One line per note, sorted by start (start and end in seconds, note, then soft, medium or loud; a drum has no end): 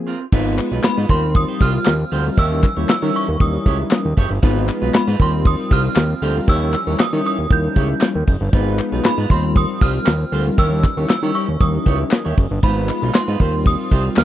0.00 0.14 F3 medium
0.00 0.14 A#3 medium
0.00 0.15 C4 medium
0.00 0.15 G#4 medium
0.07 0.24 C4 medium
0.07 0.20 F4 medium
0.07 0.19 A#4 medium
0.20 muted clean electric guitar stroke soft
0.32 0.60 G#1 loud
0.32 1.09 G#3 medium
0.32 0.99 G#3 loud
0.32 1.09 B3 medium
0.32 0.99 B3 loud
0.32 0.56 D#4 loud
0.32 0.99 D#4 loud
0.32 0.99 F4 loud
0.32 0.57 F4 loud
0.32 0.99 B4 loud
0.32 0.57 B4 loud
0.32 kick loud
0.32 crash loud
0.58 muted clean electric guitar stroke soft
0.58 clap medium
0.58 closed hi-hat medium
0.71 0.80 B1 medium
0.71 0.83 D#4 medium
0.71 0.83 F4 medium
0.71 0.84 B4 medium
0.84 0.89 G#2 soft
0.84 1.08 B5 medium
0.84 muted clean electric guitar stroke soft
0.84 snare loud
0.84 clap medium
0.84 clap loud
0.84 closed hi-hat loud
0.97 1.06 G#2 loud
0.97 1.09 D#4 medium
0.97 1.08 F4 medium
0.97 1.10 B4 medium
1.09 1.45 D#2 medium
1.09 1.92 G3 medium
1.09 2.37 G3 medium
1.09 1.92 C4 medium
1.09 2.37 C4 medium
1.09 1.92 D#4 medium
1.09 1.23 F4 medium
1.09 1.92 F4 medium
1.09 1.23 G4 medium
1.09 1.92 A#4 medium
1.09 1.22 C5 medium
1.09 1.34 C6 medium
1.09 kick medium
1.09 closed hi-hat medium
1.23 muted clean electric guitar stroke soft
1.35 1.62 D#6 loud
1.35 muted clean electric guitar stroke soft
1.35 kick loud
1.35 closed hi-hat medium
1.48 1.59 F4 medium
1.48 1.60 G4 medium
1.48 1.61 C5 medium
1.60 1.79 C2 loud
1.60 1.78 F4 loud
1.60 1.74 G4 loud
1.60 1.73 C5 loud
1.60 2.34 F6 loud
1.60 kick loud
1.60 closed hi-hat medium
1.74 muted clean electric guitar stroke soft
1.85 2.05 D#2 loud
1.85 muted clean electric guitar stroke medium
1.85 snare loud
1.85 clap loud
1.85 closed hi-hat loud
2.00 muted clean electric guitar stroke soft
2.12 2.30 D2 medium
2.12 2.21 G3 medium
2.12 2.21 C4 medium
2.12 2.21 D#4 medium
2.12 2.29 F4 loud
2.12 2.21 F4 medium
2.12 2.25 G4 loud
2.12 2.21 A#4 medium
2.12 2.24 C5 loud
2.12 open hi-hat medium
2.25 2.38 G3 medium
2.25 2.38 C4 medium
2.25 2.38 D#4 medium
2.25 2.38 F4 medium
2.25 2.38 A#4 loud
2.25 muted clean electric guitar stroke soft
2.37 2.65 D#2 loud
2.37 4.41 E3 loud
2.37 4.41 G3 medium
2.37 4.41 C#4 medium
2.37 2.61 E4 medium
2.37 2.62 G4 medium
2.37 2.62 C#5 medium
2.37 2.89 E6 loud
2.37 kick loud
2.37 closed hi-hat loud
2.51 2.67 G3 medium
2.51 2.67 C#4 medium
2.51 2.67 D#4 medium
2.51 2.67 E4 medium
2.51 2.67 A#4 loud
2.63 muted clean electric guitar stroke medium
2.63 kick loud
2.63 clap medium
2.63 closed hi-hat medium
2.77 2.85 D#2 medium
2.77 2.93 G3 medium
2.77 2.93 C#4 medium
2.77 2.93 D#4 medium
2.77 2.93 E4 medium
2.77 2.88 E4 soft
2.77 2.88 G4 medium
2.77 2.93 A#4 medium
2.77 2.89 C#5 medium
2.89 2.95 D#3 soft
2.89 3.13 E6 loud
2.89 snare loud
2.89 clap medium
2.89 clap loud
2.89 closed hi-hat loud
3.02 3.11 D#3 loud
3.02 3.27 G3 medium
3.02 3.27 C#4 medium
3.02 3.27 D#4 medium
3.02 3.27 E4 medium
3.02 3.13 E4 medium
3.02 3.14 G4 medium
3.02 3.27 A#4 medium
3.02 3.14 C#5 loud
3.14 3.28 E4 medium
3.14 3.28 G4 medium
3.14 3.27 C#5 medium
3.14 3.42 C#6 medium
3.14 closed hi-hat medium
3.28 3.37 D#2 medium
3.28 muted clean electric guitar stroke soft
3.40 3.58 D#2 loud
3.40 4.06 G3 medium
3.40 4.07 C#4 medium
3.40 4.07 D#4 medium
3.40 4.07 E4 medium
3.40 4.07 A#4 medium
3.40 4.14 D#6 loud
3.40 kick loud
3.40 closed hi-hat loud
3.54 muted clean electric guitar stroke soft
3.66 3.84 C#2 medium
3.66 3.83 E4 medium
3.66 3.79 G4 medium
3.66 3.78 C#5 loud
3.66 kick loud
3.66 closed hi-hat medium
3.79 muted clean electric guitar stroke soft
3.91 muted clean electric guitar stroke soft
3.91 snare loud
3.91 clap loud
3.91 closed hi-hat loud
4.05 4.14 D#2 loud
4.05 muted clean electric guitar stroke soft
4.17 4.27 F#1 medium
4.17 4.34 E4 medium
4.17 4.30 G4 loud
4.17 4.29 C#5 loud
4.17 kick medium
4.17 open hi-hat medium
4.30 4.39 G1 loud
4.30 muted clean electric guitar stroke soft
4.42 4.70 G#1 loud
4.42 14.24 F3 medium
4.42 5.09 G#3 loud
4.42 5.19 G#3 medium
4.42 5.09 B3 loud
4.42 5.19 B3 medium
4.42 4.66 D#4 medium
4.42 5.09 D#4 medium
4.42 5.09 F4 loud
4.42 6.46 F4 loud
4.42 4.67 F4 loud
4.42 5.09 B4 loud
4.42 4.67 B4 loud
4.42 kick loud
4.42 closed hi-hat loud
4.68 muted clean electric guitar stroke medium
4.68 clap medium
4.68 closed hi-hat medium
4.82 4.90 B1 medium
4.82 4.93 D#4 medium
4.82 4.93 F4 medium
4.82 4.94 B4 medium
4.94 4.99 G#2 soft
4.94 5.19 B5 medium
4.94 muted clean electric guitar stroke soft
4.94 snare loud
4.94 clap medium
4.94 clap loud
4.94 closed hi-hat loud
5.07 5.16 G#2 loud
5.07 5.19 D#4 medium
5.07 5.18 F4 medium
5.07 5.21 B4 loud
5.19 5.56 D#2 loud
5.19 6.02 G3 medium
5.19 8.50 G3 medium
5.19 6.02 C4 medium
5.19 6.47 C4 medium
5.19 6.02 D#4 medium
5.19 5.33 F4 medium
5.19 6.02 F4 medium
5.19 5.33 G4 medium
5.19 6.02 A#4 medium
5.19 5.32 C5 medium
5.19 5.47 C6 medium
5.19 kick loud
5.19 closed hi-hat medium
5.33 muted clean electric guitar stroke medium
5.45 5.73 D#6 loud
5.45 kick loud
5.45 closed hi-hat medium
5.59 muted clean electric guitar stroke soft
5.71 5.89 C2 medium
5.71 5.88 F4 medium
5.71 5.84 G4 loud
5.71 5.83 C5 loud
5.71 6.51 F6 loud
5.71 kick loud
5.71 closed hi-hat medium
5.84 muted clean electric guitar stroke soft
5.96 6.14 D#2 medium
5.96 muted clean electric guitar stroke soft
5.96 snare loud
5.96 clap loud
5.96 clap medium
5.96 closed hi-hat loud
6.10 muted clean electric guitar stroke soft
6.22 6.40 D2 medium
6.22 6.31 G3 medium
6.22 6.31 C4 medium
6.22 6.31 D#4 medium
6.22 6.39 F4 medium
6.22 6.31 F4 medium
6.22 6.36 G4 loud
6.22 6.31 A#4 medium
6.22 6.35 C5 loud
6.22 open hi-hat medium
6.36 6.48 G3 medium
6.36 6.48 C4 medium
6.36 6.48 D#4 medium
6.36 6.48 F4 medium
6.36 6.48 A#4 loud
6.36 muted clean electric guitar stroke soft
6.48 6.76 D#2 loud
6.48 8.51 C#4 medium
6.48 6.72 E4 medium
6.48 6.72 G4 medium
6.48 6.72 C#5 loud
6.48 7.01 E6 loud
6.48 kick loud
6.48 closed hi-hat loud
6.62 6.77 G3 medium
6.62 6.77 C#4 medium
6.62 6.78 D#4 medium
6.62 6.78 E4 medium
6.62 6.78 A#4 medium
6.74 muted clean electric guitar stroke soft
6.74 clap medium
6.74 closed hi-hat medium
6.87 6.96 D#2 medium
6.87 7.03 G3 medium
6.87 7.03 C#4 medium
6.87 7.03 D#4 medium
6.87 7.03 E4 medium
6.87 6.98 E4 medium
6.87 6.99 G4 medium
6.87 7.03 A#4 medium
6.87 6.99 C#5 medium
6.99 7.05 D#3 medium
6.99 7.25 D#6 loud
6.99 snare loud
6.99 clap medium
6.99 clap loud
6.99 closed hi-hat loud
7.13 7.21 D#3 loud
7.13 7.37 G3 medium
7.13 7.38 C#4 medium
7.13 7.38 D#4 medium
7.13 7.38 E4 medium
7.13 7.24 E4 medium
7.13 7.24 G4 medium
7.13 7.38 A#4 medium
7.13 7.25 C#5 medium
7.24 7.38 E4 medium
7.24 7.38 G4 medium
7.24 7.37 C#5 medium
7.24 7.52 D#6 loud
7.24 closed hi-hat medium
7.38 7.47 D#2 medium
7.38 muted clean electric guitar stroke medium
7.51 7.69 D#2 loud
7.51 8.17 G3 medium
7.51 8.17 C#4 medium
7.51 8.17 D#4 medium
7.51 8.17 E4 medium
7.51 8.17 A#4 medium
7.51 8.24 G6 loud
7.51 kick loud
7.51 closed hi-hat loud
7.64 muted clean electric guitar stroke medium
7.76 7.94 C#2 loud
7.76 7.93 E4 medium
7.76 7.89 G4 loud
7.76 7.88 C#5 loud
7.76 kick loud
7.76 closed hi-hat medium
7.90 muted clean electric guitar stroke soft
8.01 snare loud
8.01 clap loud
8.01 clap medium
8.01 closed hi-hat loud
8.15 8.24 D#2 loud
8.15 muted clean electric guitar stroke soft
8.27 8.37 F#1 medium
8.27 kick loud
8.27 open hi-hat medium
8.41 8.49 G1 loud
8.41 muted clean electric guitar stroke soft
8.53 8.81 G#1 loud
8.53 9.19 G#3 loud
8.53 9.29 G#3 medium
8.53 9.29 B3 medium
8.53 9.20 B3 loud
8.53 8.77 D#4 medium
8.53 9.20 D#4 loud
8.53 10.56 F4 loud
8.53 8.77 F4 medium
8.53 9.20 F4 loud
8.53 9.20 B4 loud
8.53 8.77 B4 medium
8.53 kick loud
8.53 closed hi-hat loud
8.79 muted clean electric guitar stroke soft
8.79 clap medium
8.79 closed hi-hat medium
8.92 9.01 B1 medium
8.92 9.03 D#4 medium
8.92 9.04 F4 medium
8.92 9.04 B4 medium
9.04 9.10 G#2 soft
9.04 9.32 B5 loud
9.04 muted clean electric guitar stroke soft
9.04 snare loud
9.04 clap medium
9.04 clap loud
9.04 closed hi-hat loud
9.18 9.26 G#2 loud
9.18 9.30 D#4 medium
9.18 9.29 F4 medium
9.18 9.31 B4 medium
9.30 9.66 D#2 medium
9.30 10.12 G3 medium
9.30 12.60 G3 medium
9.30 10.12 C4 medium
9.30 10.57 C4 medium
9.30 10.12 D#4 medium
9.30 9.44 F4 medium
9.30 10.13 F4 medium
9.30 9.43 G4 medium
9.30 10.13 A#4 medium
9.30 9.42 C5 medium
9.30 9.57 C6 medium
9.30 kick loud
9.30 closed hi-hat medium
9.44 muted clean electric guitar stroke medium
9.56 9.80 D#6 loud
9.56 kick loud
9.56 closed hi-hat loud
9.69 muted clean electric guitar stroke medium
9.81 9.99 C2 loud
9.81 9.98 F4 loud
9.81 9.94 G4 loud
9.81 9.94 C5 loud
9.81 10.61 F6 loud
9.81 kick loud
9.81 closed hi-hat medium
9.95 muted clean electric guitar stroke medium
10.06 10.25 D#2 loud
10.06 snare loud
10.06 clap loud
10.06 clap medium
10.06 closed hi-hat loud
10.20 muted clean electric guitar stroke soft
10.32 10.50 D2 medium
10.32 10.41 G3 medium
10.32 10.41 C4 medium
10.32 10.41 D#4 medium
10.32 10.49 F4 medium
10.32 10.41 F4 medium
10.32 10.46 G4 medium
10.32 10.42 A#4 medium
10.32 10.45 C5 medium
10.32 open hi-hat medium
10.46 10.58 G3 loud
10.46 10.58 C4 medium
10.46 10.58 D#4 medium
10.46 10.58 F4 medium
10.46 10.59 A#4 loud
10.46 muted clean electric guitar stroke soft
10.58 10.86 D#2 loud
10.58 10.82 E4 medium
10.58 10.82 G4 medium
10.58 10.82 C#5 medium
10.58 11.06 E6 loud
10.58 kick loud
10.58 closed hi-hat loud
10.72 10.88 G3 medium
10.72 10.88 C#4 medium
10.72 10.88 D#4 medium
10.72 10.88 E4 medium
10.72 10.88 A#4 medium
10.83 muted clean electric guitar stroke soft
10.83 kick loud
10.83 clap medium
10.83 closed hi-hat medium
10.97 11.06 D#2 medium
10.97 11.13 G3 medium
10.97 11.13 C#4 medium
10.97 11.13 D#4 medium
10.97 11.14 E4 medium
10.97 11.08 E4 soft
10.97 11.09 G4 medium
10.97 11.14 A#4 medium
10.97 11.09 C#5 medium
11.09 11.15 D#3 soft
11.09 11.36 E6 loud
11.09 muted clean electric guitar stroke soft
11.09 snare loud
11.09 clap medium
11.09 clap loud
11.09 closed hi-hat loud
11.23 11.31 D#3 loud
11.23 11.48 G3 medium
11.23 11.48 C#4 medium
11.23 11.48 D#4 medium
11.23 11.48 E4 medium
11.23 11.33 E4 medium
11.23 11.34 G4 medium
11.23 11.48 A#4 medium
11.23 11.35 C#5 medium
11.35 11.48 E4 medium
11.35 11.48 G4 medium
11.35 11.47 C#5 medium
11.35 11.61 C#6 medium
11.35 closed hi-hat medium
11.48 11.57 D#2 medium
11.48 muted clean electric guitar stroke soft
11.60 11.79 D#2 loud
11.60 12.27 G3 medium
11.60 12.27 C#4 medium
11.60 12.27 D#4 medium
11.60 12.27 E4 medium
11.60 12.27 A#4 loud
11.60 12.34 D#6 medium
11.60 kick loud
11.60 closed hi-hat loud
11.74 muted clean electric guitar stroke medium
11.86 12.04 C#2 medium
11.86 12.03 E4 medium
11.86 11.99 G4 medium
11.86 11.99 C#5 loud
11.86 kick loud
11.86 closed hi-hat medium
12.00 muted clean electric guitar stroke medium
12.11 muted clean electric guitar stroke soft
12.11 snare loud
12.11 clap loud
12.11 closed hi-hat loud
12.25 12.34 D#2 medium
12.25 12.36 E4 medium
12.25 12.37 G4 medium
12.25 12.37 C#5 medium
12.37 12.47 F#1 medium
12.37 muted clean electric guitar stroke soft
12.37 kick medium
12.37 open hi-hat medium
12.51 12.60 G1 loud
12.51 muted clean electric guitar stroke soft
12.62 12.91 G#1 loud
12.62 13.29 G#3 medium
12.62 13.40 G#3 medium
12.62 13.29 B3 medium
12.62 13.40 B3 medium
12.62 12.87 D#4 loud
12.62 13.29 D#4 medium
12.62 13.30 F4 medium
12.62 13.39 F4 medium
12.62 12.87 F4 loud
12.62 13.30 B4 loud
12.62 12.87 B4 loud
12.62 13.16 B5 medium
12.62 kick loud
12.62 closed hi-hat loud
12.89 muted clean electric guitar stroke soft
12.89 clap medium
12.89 closed hi-hat medium
13.02 13.11 B1 medium
13.02 13.13 D#4 medium
13.02 13.14 F4 medium
13.02 13.14 B4 medium
13.14 13.20 G#2 soft
13.14 13.63 C6 medium
13.14 muted clean electric guitar stroke soft
13.14 snare loud
13.14 clap medium
13.14 clap loud
13.14 closed hi-hat loud
13.28 13.37 G#2 loud
13.28 13.39 D#4 medium
13.28 13.39 F4 medium
13.28 13.41 B4 loud
13.40 13.76 D#2 loud
13.40 14.22 G3 medium
13.40 14.24 G3 medium
13.40 14.24 C4 medium
13.40 14.22 C4 medium
13.40 14.23 D#4 medium
13.40 13.54 F4 medium
13.40 14.24 F4 medium
13.40 14.23 F4 medium
13.40 13.53 G4 medium
13.40 14.23 A#4 medium
13.40 13.52 C5 medium
13.40 kick medium
13.40 closed hi-hat medium
13.54 muted clean electric guitar stroke soft
13.66 14.19 D#6 loud
13.66 kick loud
13.66 closed hi-hat medium
13.79 muted clean electric guitar stroke medium
13.91 14.10 C2 loud
13.91 14.08 F4 medium
13.91 14.05 G4 loud
13.91 14.04 C5 loud
13.91 kick loud
13.91 closed hi-hat medium
14.05 muted clean electric guitar stroke medium
14.16 14.24 D#2 loud
14.16 14.24 F6 loud
14.16 snare loud
14.16 clap medium
14.16 clap loud
14.16 closed hi-hat loud